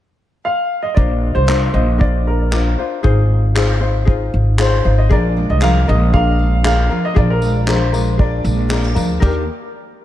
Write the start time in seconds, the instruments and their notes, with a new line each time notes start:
0.45 upright piano F5
0.83 upright piano D#5
0.94 upright bass A#1, ukulele D4 F4 A#4 C5, upright piano D5, kick
1.35 upright bass C2, upright piano C5
1.48 ukulele D4 F4 A#4 C5, clap
1.73 upright bass A#1, ukulele D4 F4 C5, upright piano D#5
1.98 ukulele D4 F4 A#4 C5, upright piano D5, kick
2.27 upright piano A#4
2.52 ukulele D4 F4 A#4 C5, clap
2.78 ukulele D4 F4 C5
3.03 upright bass G#1, ukulele D#4 F4 G#4 C5, kick
3.55 ukulele D#4 F4 G#4 C5, clap
3.80 ukulele D#4 F4 C5
4.05 ukulele D#4 F4 G#4 C5, kick
4.34 upright bass G#1
4.58 ukulele D#4 F4 G#4 C5, upright piano C5, clap
4.84 upright bass G#1, ukulele D#4 F4 C5
4.98 upright piano D#5
5.09 upright bass A#1, steel-string acoustic guitar F3 D4, ukulele D4 F4 G#4 A#4, upright piano D5, kick
5.37 steel-string acoustic guitar G#3
5.50 upright bass C2, upright piano D#5
5.61 steel-string acoustic guitar F3, ukulele D4 F4 G#4 A#4, upright piano F5, clap
5.87 upright bass A#1, steel-string acoustic guitar G#3, ukulele D4 F4 A#4, upright piano D#5
6.13 ukulele D4 F4 G#4 A#4, steel-string acoustic guitar D4, upright piano F5, kick
6.39 steel-string acoustic guitar G#3
6.64 ukulele D4 F4 G#4 A#4, steel-string acoustic guitar D4, upright piano F5, clap
6.89 steel-string acoustic guitar F3, ukulele D4 F4 A#4
7.05 upright piano D#5
7.15 upright bass A#1, steel-string acoustic guitar F3 D4, ukulele D4 F4 G#4 A#4, upright piano D5, kick
7.30 upright piano A#4
7.42 steel-string acoustic guitar G#3, tambourine
7.67 steel-string acoustic guitar F3, ukulele D4 F4 G#4 A#4, upright piano C5, clap
7.92 steel-string acoustic guitar G#3, ukulele D4 F4 A#4, tambourine
8.18 ukulele D4 F4 G#4 A#4, steel-string acoustic guitar D4, upright piano D5, kick
8.44 upright bass A#1, steel-string acoustic guitar G#3, tambourine
8.70 steel-string acoustic guitar C4, ukulele D4 F4 G#4 A#4, clap
8.84 steel-string acoustic guitar D4
8.95 upright bass D2, steel-string acoustic guitar F3, ukulele D4 F4 A#4, tambourine
9.20 upright bass D#2, steel-string acoustic guitar D#3 A#3 D4, ukulele D#4 G4 A#4 D5, upright piano A#4, kick, ride bell
9.24 steel-string acoustic guitar G4